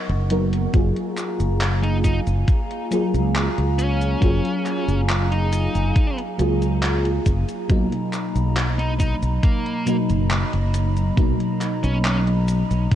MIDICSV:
0, 0, Header, 1, 6, 480
1, 0, Start_track
1, 0, Key_signature, 6, "major"
1, 0, Tempo, 869565
1, 408, Time_signature, 4, 2, 24, 8
1, 7148, End_track
2, 0, Start_track
2, 0, Title_t, "Ambient pad"
2, 0, Program_c, 0, 92
2, 0, Note_on_c, 0, 70, 82
2, 0, Note_on_c, 0, 75, 75
2, 0, Note_on_c, 0, 78, 74
2, 0, Note_on_c, 0, 85, 89
2, 386, Note_off_c, 0, 70, 0
2, 386, Note_off_c, 0, 75, 0
2, 386, Note_off_c, 0, 78, 0
2, 389, Note_off_c, 0, 85, 0
2, 405, Note_on_c, 0, 54, 81
2, 406, Note_on_c, 0, 77, 76
2, 406, Note_on_c, 0, 80, 76
2, 406, Note_on_c, 0, 82, 94
2, 4225, Note_off_c, 0, 77, 0
2, 4225, Note_off_c, 0, 80, 0
2, 4225, Note_off_c, 0, 82, 0
2, 4248, Note_on_c, 0, 82, 75
2, 4248, Note_on_c, 0, 83, 88
2, 4250, Note_on_c, 0, 75, 76
2, 7148, Note_off_c, 0, 54, 0
2, 7148, Note_off_c, 0, 75, 0
2, 7148, Note_off_c, 0, 82, 0
2, 7148, Note_off_c, 0, 83, 0
2, 7148, End_track
3, 0, Start_track
3, 0, Title_t, "Lead electric guitar"
3, 0, Program_c, 1, 29
3, 1011, Note_on_c, 1, 63, 87
3, 1086, Note_off_c, 1, 63, 0
3, 1127, Note_on_c, 1, 63, 79
3, 1207, Note_off_c, 1, 63, 0
3, 2087, Note_on_c, 1, 61, 90
3, 2761, Note_off_c, 1, 61, 0
3, 2933, Note_on_c, 1, 63, 88
3, 3413, Note_off_c, 1, 63, 0
3, 4852, Note_on_c, 1, 63, 86
3, 4926, Note_off_c, 1, 63, 0
3, 4966, Note_on_c, 1, 63, 77
3, 5047, Note_off_c, 1, 63, 0
3, 5207, Note_on_c, 1, 58, 91
3, 5498, Note_off_c, 1, 58, 0
3, 6533, Note_on_c, 1, 61, 87
3, 6607, Note_off_c, 1, 61, 0
3, 6648, Note_on_c, 1, 61, 75
3, 6728, Note_off_c, 1, 61, 0
3, 7148, End_track
4, 0, Start_track
4, 0, Title_t, "FM electric piano"
4, 0, Program_c, 2, 5
4, 0, Control_c, 2, 64, 127
4, 168, Note_on_c, 2, 54, 78
4, 171, Note_on_c, 2, 59, 69
4, 173, Note_on_c, 2, 63, 69
4, 176, Note_on_c, 2, 70, 84
4, 381, Note_off_c, 2, 54, 0
4, 382, Note_off_c, 2, 59, 0
4, 383, Note_off_c, 2, 63, 0
4, 385, Note_off_c, 2, 70, 0
4, 403, Note_on_c, 2, 54, 80
4, 409, Note_on_c, 2, 58, 76
4, 414, Note_on_c, 2, 65, 74
4, 416, Control_c, 2, 64, 0
4, 419, Note_on_c, 2, 68, 88
4, 510, Control_c, 2, 64, 127
4, 1578, Note_off_c, 2, 54, 0
4, 1581, Note_off_c, 2, 58, 0
4, 1584, Note_off_c, 2, 65, 0
4, 1586, Note_off_c, 2, 68, 0
4, 1604, Note_on_c, 2, 54, 83
4, 1609, Note_on_c, 2, 58, 74
4, 1614, Note_on_c, 2, 65, 77
4, 1620, Note_on_c, 2, 68, 95
4, 2298, Note_off_c, 2, 54, 0
4, 2301, Note_off_c, 2, 58, 0
4, 2304, Note_off_c, 2, 65, 0
4, 2306, Note_off_c, 2, 68, 0
4, 2320, Note_on_c, 2, 54, 85
4, 2326, Note_on_c, 2, 58, 76
4, 2331, Note_on_c, 2, 65, 75
4, 2337, Note_on_c, 2, 68, 90
4, 3497, Note_off_c, 2, 54, 0
4, 3500, Note_off_c, 2, 58, 0
4, 3502, Note_off_c, 2, 65, 0
4, 3505, Note_off_c, 2, 68, 0
4, 3520, Note_on_c, 2, 54, 84
4, 3527, Note_on_c, 2, 58, 76
4, 3532, Note_on_c, 2, 65, 77
4, 3537, Note_on_c, 2, 68, 93
4, 4217, Note_off_c, 2, 54, 0
4, 4220, Note_off_c, 2, 58, 0
4, 4222, Note_off_c, 2, 65, 0
4, 4225, Note_off_c, 2, 68, 0
4, 4242, Note_on_c, 2, 47, 85
4, 4248, Note_on_c, 2, 54, 74
4, 4253, Note_on_c, 2, 58, 74
4, 4255, Control_c, 2, 64, 0
4, 4259, Note_on_c, 2, 63, 91
4, 4354, Control_c, 2, 64, 127
4, 5418, Note_off_c, 2, 47, 0
4, 5421, Note_off_c, 2, 54, 0
4, 5423, Note_off_c, 2, 58, 0
4, 5426, Note_off_c, 2, 63, 0
4, 5441, Note_on_c, 2, 47, 83
4, 5446, Note_on_c, 2, 54, 76
4, 5452, Note_on_c, 2, 58, 78
4, 5456, Note_on_c, 2, 63, 91
4, 6137, Note_off_c, 2, 47, 0
4, 6139, Note_off_c, 2, 54, 0
4, 6142, Note_off_c, 2, 58, 0
4, 6145, Note_off_c, 2, 63, 0
4, 6163, Note_on_c, 2, 47, 84
4, 6168, Note_on_c, 2, 54, 75
4, 6175, Note_on_c, 2, 58, 75
4, 6180, Note_on_c, 2, 63, 92
4, 7148, Note_off_c, 2, 47, 0
4, 7148, Note_off_c, 2, 54, 0
4, 7148, Note_off_c, 2, 58, 0
4, 7148, Note_off_c, 2, 63, 0
4, 7148, End_track
5, 0, Start_track
5, 0, Title_t, "Fretless electric bass"
5, 0, Program_c, 3, 35
5, 52, Note_on_c, 3, 30, 102
5, 364, Note_off_c, 3, 30, 0
5, 408, Note_on_c, 3, 30, 96
5, 503, Note_off_c, 3, 30, 0
5, 773, Note_on_c, 3, 30, 93
5, 1205, Note_off_c, 3, 30, 0
5, 1254, Note_on_c, 3, 30, 91
5, 1341, Note_off_c, 3, 30, 0
5, 1733, Note_on_c, 3, 37, 94
5, 1913, Note_off_c, 3, 37, 0
5, 1975, Note_on_c, 3, 37, 81
5, 2285, Note_off_c, 3, 37, 0
5, 2328, Note_on_c, 3, 30, 98
5, 2423, Note_off_c, 3, 30, 0
5, 2694, Note_on_c, 3, 30, 97
5, 3126, Note_off_c, 3, 30, 0
5, 3173, Note_on_c, 3, 30, 88
5, 3261, Note_off_c, 3, 30, 0
5, 3529, Note_on_c, 3, 37, 80
5, 3965, Note_off_c, 3, 37, 0
5, 4009, Note_on_c, 3, 30, 105
5, 4103, Note_off_c, 3, 30, 0
5, 4248, Note_on_c, 3, 35, 99
5, 4343, Note_off_c, 3, 35, 0
5, 4612, Note_on_c, 3, 35, 94
5, 5045, Note_off_c, 3, 35, 0
5, 5094, Note_on_c, 3, 35, 92
5, 5181, Note_off_c, 3, 35, 0
5, 5576, Note_on_c, 3, 30, 94
5, 5755, Note_off_c, 3, 30, 0
5, 5816, Note_on_c, 3, 30, 81
5, 6126, Note_off_c, 3, 30, 0
5, 6169, Note_on_c, 3, 35, 101
5, 6263, Note_off_c, 3, 35, 0
5, 6534, Note_on_c, 3, 35, 96
5, 6966, Note_off_c, 3, 35, 0
5, 7014, Note_on_c, 3, 35, 88
5, 7101, Note_off_c, 3, 35, 0
5, 7148, End_track
6, 0, Start_track
6, 0, Title_t, "Drums"
6, 53, Note_on_c, 9, 42, 26
6, 108, Note_off_c, 9, 42, 0
6, 168, Note_on_c, 9, 42, 92
6, 223, Note_off_c, 9, 42, 0
6, 293, Note_on_c, 9, 42, 55
6, 348, Note_off_c, 9, 42, 0
6, 408, Note_on_c, 9, 36, 120
6, 408, Note_on_c, 9, 42, 70
6, 408, Note_on_c, 9, 69, 27
6, 463, Note_off_c, 9, 36, 0
6, 463, Note_off_c, 9, 42, 0
6, 463, Note_off_c, 9, 69, 0
6, 533, Note_on_c, 9, 42, 40
6, 588, Note_off_c, 9, 42, 0
6, 649, Note_on_c, 9, 39, 38
6, 649, Note_on_c, 9, 42, 99
6, 649, Note_on_c, 9, 69, 66
6, 704, Note_off_c, 9, 39, 0
6, 704, Note_off_c, 9, 42, 0
6, 704, Note_off_c, 9, 69, 0
6, 773, Note_on_c, 9, 42, 40
6, 773, Note_on_c, 9, 69, 37
6, 828, Note_off_c, 9, 42, 0
6, 828, Note_off_c, 9, 69, 0
6, 888, Note_on_c, 9, 39, 121
6, 888, Note_on_c, 9, 42, 70
6, 888, Note_on_c, 9, 69, 30
6, 943, Note_off_c, 9, 39, 0
6, 943, Note_off_c, 9, 42, 0
6, 943, Note_off_c, 9, 69, 0
6, 1013, Note_on_c, 9, 42, 43
6, 1069, Note_off_c, 9, 42, 0
6, 1128, Note_on_c, 9, 36, 59
6, 1129, Note_on_c, 9, 42, 96
6, 1129, Note_on_c, 9, 69, 65
6, 1184, Note_off_c, 9, 36, 0
6, 1184, Note_off_c, 9, 42, 0
6, 1184, Note_off_c, 9, 69, 0
6, 1253, Note_on_c, 9, 42, 41
6, 1253, Note_on_c, 9, 69, 38
6, 1308, Note_off_c, 9, 42, 0
6, 1308, Note_off_c, 9, 69, 0
6, 1368, Note_on_c, 9, 36, 118
6, 1370, Note_on_c, 9, 42, 69
6, 1370, Note_on_c, 9, 69, 29
6, 1424, Note_off_c, 9, 36, 0
6, 1425, Note_off_c, 9, 42, 0
6, 1425, Note_off_c, 9, 69, 0
6, 1494, Note_on_c, 9, 42, 40
6, 1549, Note_off_c, 9, 42, 0
6, 1609, Note_on_c, 9, 42, 97
6, 1609, Note_on_c, 9, 69, 69
6, 1664, Note_off_c, 9, 42, 0
6, 1664, Note_off_c, 9, 69, 0
6, 1735, Note_on_c, 9, 42, 40
6, 1735, Note_on_c, 9, 69, 38
6, 1790, Note_off_c, 9, 42, 0
6, 1790, Note_off_c, 9, 69, 0
6, 1851, Note_on_c, 9, 39, 113
6, 1851, Note_on_c, 9, 42, 67
6, 1851, Note_on_c, 9, 69, 27
6, 1906, Note_off_c, 9, 39, 0
6, 1906, Note_off_c, 9, 42, 0
6, 1906, Note_off_c, 9, 69, 0
6, 1975, Note_on_c, 9, 42, 41
6, 2030, Note_off_c, 9, 42, 0
6, 2090, Note_on_c, 9, 42, 94
6, 2090, Note_on_c, 9, 69, 64
6, 2145, Note_off_c, 9, 42, 0
6, 2145, Note_off_c, 9, 69, 0
6, 2215, Note_on_c, 9, 42, 42
6, 2215, Note_on_c, 9, 69, 39
6, 2270, Note_off_c, 9, 42, 0
6, 2270, Note_off_c, 9, 69, 0
6, 2328, Note_on_c, 9, 36, 126
6, 2329, Note_on_c, 9, 42, 68
6, 2329, Note_on_c, 9, 69, 28
6, 2383, Note_off_c, 9, 36, 0
6, 2385, Note_off_c, 9, 42, 0
6, 2385, Note_off_c, 9, 69, 0
6, 2455, Note_on_c, 9, 42, 40
6, 2510, Note_off_c, 9, 42, 0
6, 2570, Note_on_c, 9, 39, 40
6, 2570, Note_on_c, 9, 42, 99
6, 2570, Note_on_c, 9, 69, 68
6, 2625, Note_off_c, 9, 39, 0
6, 2625, Note_off_c, 9, 42, 0
6, 2625, Note_off_c, 9, 69, 0
6, 2696, Note_on_c, 9, 42, 40
6, 2696, Note_on_c, 9, 69, 36
6, 2751, Note_off_c, 9, 42, 0
6, 2751, Note_off_c, 9, 69, 0
6, 2811, Note_on_c, 9, 39, 123
6, 2811, Note_on_c, 9, 42, 68
6, 2811, Note_on_c, 9, 69, 28
6, 2866, Note_off_c, 9, 39, 0
6, 2866, Note_off_c, 9, 42, 0
6, 2866, Note_off_c, 9, 69, 0
6, 2935, Note_on_c, 9, 42, 42
6, 2991, Note_off_c, 9, 42, 0
6, 3050, Note_on_c, 9, 42, 98
6, 3050, Note_on_c, 9, 69, 65
6, 3105, Note_off_c, 9, 42, 0
6, 3105, Note_off_c, 9, 69, 0
6, 3174, Note_on_c, 9, 42, 41
6, 3174, Note_on_c, 9, 69, 39
6, 3229, Note_off_c, 9, 42, 0
6, 3229, Note_off_c, 9, 69, 0
6, 3288, Note_on_c, 9, 36, 126
6, 3289, Note_on_c, 9, 42, 66
6, 3289, Note_on_c, 9, 69, 28
6, 3343, Note_off_c, 9, 36, 0
6, 3344, Note_off_c, 9, 42, 0
6, 3344, Note_off_c, 9, 69, 0
6, 3413, Note_on_c, 9, 42, 39
6, 3469, Note_off_c, 9, 42, 0
6, 3529, Note_on_c, 9, 42, 97
6, 3529, Note_on_c, 9, 69, 65
6, 3584, Note_off_c, 9, 42, 0
6, 3584, Note_off_c, 9, 69, 0
6, 3654, Note_on_c, 9, 42, 41
6, 3654, Note_on_c, 9, 69, 38
6, 3709, Note_off_c, 9, 42, 0
6, 3709, Note_off_c, 9, 69, 0
6, 3768, Note_on_c, 9, 39, 117
6, 3768, Note_on_c, 9, 42, 67
6, 3768, Note_on_c, 9, 69, 27
6, 3823, Note_off_c, 9, 39, 0
6, 3823, Note_off_c, 9, 42, 0
6, 3823, Note_off_c, 9, 69, 0
6, 3893, Note_on_c, 9, 42, 41
6, 3948, Note_off_c, 9, 42, 0
6, 4008, Note_on_c, 9, 36, 63
6, 4008, Note_on_c, 9, 42, 96
6, 4008, Note_on_c, 9, 69, 65
6, 4063, Note_off_c, 9, 36, 0
6, 4063, Note_off_c, 9, 42, 0
6, 4063, Note_off_c, 9, 69, 0
6, 4132, Note_on_c, 9, 42, 41
6, 4132, Note_on_c, 9, 69, 36
6, 4188, Note_off_c, 9, 42, 0
6, 4188, Note_off_c, 9, 69, 0
6, 4248, Note_on_c, 9, 36, 127
6, 4248, Note_on_c, 9, 42, 67
6, 4248, Note_on_c, 9, 69, 27
6, 4303, Note_off_c, 9, 36, 0
6, 4303, Note_off_c, 9, 42, 0
6, 4303, Note_off_c, 9, 69, 0
6, 4374, Note_on_c, 9, 42, 40
6, 4429, Note_off_c, 9, 42, 0
6, 4489, Note_on_c, 9, 39, 40
6, 4489, Note_on_c, 9, 42, 96
6, 4489, Note_on_c, 9, 69, 64
6, 4544, Note_off_c, 9, 39, 0
6, 4544, Note_off_c, 9, 42, 0
6, 4544, Note_off_c, 9, 69, 0
6, 4613, Note_on_c, 9, 42, 39
6, 4613, Note_on_c, 9, 69, 36
6, 4669, Note_off_c, 9, 42, 0
6, 4669, Note_off_c, 9, 69, 0
6, 4728, Note_on_c, 9, 39, 120
6, 4728, Note_on_c, 9, 42, 67
6, 4728, Note_on_c, 9, 69, 27
6, 4784, Note_off_c, 9, 39, 0
6, 4784, Note_off_c, 9, 42, 0
6, 4784, Note_off_c, 9, 69, 0
6, 4853, Note_on_c, 9, 42, 41
6, 4909, Note_off_c, 9, 42, 0
6, 4968, Note_on_c, 9, 36, 63
6, 4968, Note_on_c, 9, 42, 92
6, 4968, Note_on_c, 9, 69, 62
6, 5023, Note_off_c, 9, 36, 0
6, 5023, Note_off_c, 9, 42, 0
6, 5023, Note_off_c, 9, 69, 0
6, 5094, Note_on_c, 9, 42, 40
6, 5094, Note_on_c, 9, 69, 37
6, 5149, Note_off_c, 9, 42, 0
6, 5149, Note_off_c, 9, 69, 0
6, 5208, Note_on_c, 9, 36, 127
6, 5209, Note_on_c, 9, 42, 69
6, 5209, Note_on_c, 9, 69, 27
6, 5263, Note_off_c, 9, 36, 0
6, 5264, Note_off_c, 9, 42, 0
6, 5264, Note_off_c, 9, 69, 0
6, 5334, Note_on_c, 9, 42, 40
6, 5389, Note_off_c, 9, 42, 0
6, 5448, Note_on_c, 9, 42, 99
6, 5448, Note_on_c, 9, 69, 62
6, 5503, Note_off_c, 9, 42, 0
6, 5503, Note_off_c, 9, 69, 0
6, 5574, Note_on_c, 9, 42, 40
6, 5574, Note_on_c, 9, 69, 36
6, 5629, Note_off_c, 9, 42, 0
6, 5629, Note_off_c, 9, 69, 0
6, 5689, Note_on_c, 9, 39, 123
6, 5689, Note_on_c, 9, 42, 66
6, 5689, Note_on_c, 9, 69, 27
6, 5745, Note_off_c, 9, 39, 0
6, 5745, Note_off_c, 9, 42, 0
6, 5745, Note_off_c, 9, 69, 0
6, 5814, Note_on_c, 9, 42, 41
6, 5869, Note_off_c, 9, 42, 0
6, 5929, Note_on_c, 9, 42, 92
6, 5929, Note_on_c, 9, 69, 61
6, 5984, Note_off_c, 9, 42, 0
6, 5984, Note_off_c, 9, 69, 0
6, 6054, Note_on_c, 9, 42, 39
6, 6054, Note_on_c, 9, 69, 36
6, 6109, Note_off_c, 9, 42, 0
6, 6109, Note_off_c, 9, 69, 0
6, 6168, Note_on_c, 9, 36, 127
6, 6169, Note_on_c, 9, 42, 64
6, 6169, Note_on_c, 9, 69, 27
6, 6224, Note_off_c, 9, 36, 0
6, 6225, Note_off_c, 9, 42, 0
6, 6225, Note_off_c, 9, 69, 0
6, 6294, Note_on_c, 9, 42, 39
6, 6349, Note_off_c, 9, 42, 0
6, 6409, Note_on_c, 9, 39, 38
6, 6409, Note_on_c, 9, 42, 96
6, 6409, Note_on_c, 9, 69, 62
6, 6464, Note_off_c, 9, 39, 0
6, 6464, Note_off_c, 9, 42, 0
6, 6464, Note_off_c, 9, 69, 0
6, 6534, Note_on_c, 9, 42, 37
6, 6534, Note_on_c, 9, 69, 33
6, 6589, Note_off_c, 9, 42, 0
6, 6589, Note_off_c, 9, 69, 0
6, 6650, Note_on_c, 9, 39, 119
6, 6650, Note_on_c, 9, 42, 64
6, 6650, Note_on_c, 9, 69, 27
6, 6706, Note_off_c, 9, 39, 0
6, 6706, Note_off_c, 9, 42, 0
6, 6706, Note_off_c, 9, 69, 0
6, 6775, Note_on_c, 9, 42, 39
6, 6830, Note_off_c, 9, 42, 0
6, 6890, Note_on_c, 9, 42, 92
6, 6890, Note_on_c, 9, 69, 60
6, 6945, Note_off_c, 9, 42, 0
6, 6945, Note_off_c, 9, 69, 0
6, 7015, Note_on_c, 9, 42, 39
6, 7015, Note_on_c, 9, 69, 36
6, 7070, Note_off_c, 9, 42, 0
6, 7070, Note_off_c, 9, 69, 0
6, 7128, Note_on_c, 9, 36, 120
6, 7130, Note_on_c, 9, 42, 64
6, 7130, Note_on_c, 9, 69, 26
6, 7148, Note_off_c, 9, 36, 0
6, 7148, Note_off_c, 9, 42, 0
6, 7148, Note_off_c, 9, 69, 0
6, 7148, End_track
0, 0, End_of_file